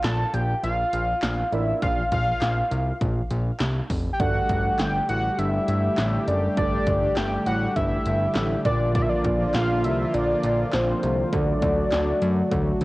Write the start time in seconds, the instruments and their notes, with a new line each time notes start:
Already playing: grand piano A#3 D4 F4 A#4 D5
0.04 analog synth bass A#1, analog synth lead A5, snare, clap, closed hi-hat
0.34 analog synth bass A#1, analog synth lead G5, closed hi-hat
0.63 analog synth bass A#1, analog synth lead F5, closed hi-hat
0.93 analog synth bass A#1, closed hi-hat
1.23 analog synth bass A#1, snare, clap, closed hi-hat
1.52 analog synth bass A1, grand piano A#3 D4 F4 A#4 D5, analog synth lead E5, closed hi-hat
1.82 analog synth bass A#1, analog synth lead F5, kick, closed hi-hat
2.12 analog synth bass A#1, analog synth lead F5, kick, closed hi-hat
2.42 analog synth bass A#1, snare, clap, closed hi-hat
2.71 analog synth bass C2, closed hi-hat
3.01 analog synth bass A#1, kick, closed hi-hat
3.31 analog synth bass A#1, closed hi-hat
3.60 analog synth bass C2, snare, clap, closed hi-hat
3.90 analog synth bass F1, kick, open hi-hat
4.13 analog synth lead G5
4.20 analog synth bass G1, analog synth pad D3 G3 A3 G4, grand piano A3 D4 G4 A4 D5, analog synth lead F#5, kick, closed hi-hat
4.49 analog synth bass G1, kick, closed hi-hat
4.79 analog synth bass G1, analog synth lead G5, snare, clap, closed hi-hat
5.09 analog synth bass A1, analog synth lead F#5, closed hi-hat
5.39 analog synth bass G1, analog synth lead E5, closed hi-hat
5.68 analog synth bass G1, closed hi-hat
5.98 analog synth bass A1, snare, clap, closed hi-hat
6.28 analog synth bass F#1, analog synth lead D5, closed hi-hat
6.57 analog synth bass G1, grand piano A3 D4 G4 A4 D5, analog synth lead D5, kick, closed hi-hat
6.87 analog synth bass G1, kick, closed hi-hat
7.17 analog synth bass G1, analog synth lead G5, snare, clap, closed hi-hat
7.46 analog synth bass A1, analog synth lead F#5, closed hi-hat
7.76 analog synth bass G1, analog synth lead E5, kick, closed hi-hat
8.06 analog synth bass G1, closed hi-hat
8.36 analog synth bass A1, snare, clap, closed hi-hat
8.65 analog synth bass A#1, analog synth pad F3 A#3 F4, grand piano A#3 D4 F4 A#4 D5, analog synth lead D5, kick, closed hi-hat
8.95 analog synth lead D5, kick, closed hi-hat
9.02 analog synth lead E5
9.09 analog synth lead D5
9.24 analog synth bass A#1, kick, closed hi-hat
9.54 analog synth bass A#1, analog synth lead F5, snare, clap, closed hi-hat
9.84 analog synth bass C2, analog synth lead E5, closed hi-hat
10.14 analog synth bass A#1, analog synth lead D5, closed hi-hat
10.43 analog synth bass A#1, closed hi-hat
10.73 analog synth bass A#1, analog synth lead C5, snare, clap, closed hi-hat
11.03 analog synth bass C2, closed hi-hat
11.33 analog synth bass D2, analog synth pad F#3 A3 F#4, grand piano A3 D4 F#4 A4 D5, analog synth lead D5, kick, closed hi-hat
11.62 analog synth bass D2, kick, closed hi-hat
11.92 analog synth bass D2, snare, clap, closed hi-hat
12.22 analog synth bass F#2, closed hi-hat
12.51 analog synth bass D2, kick, closed hi-hat, high tom
12.81 analog synth bass D2, closed hi-hat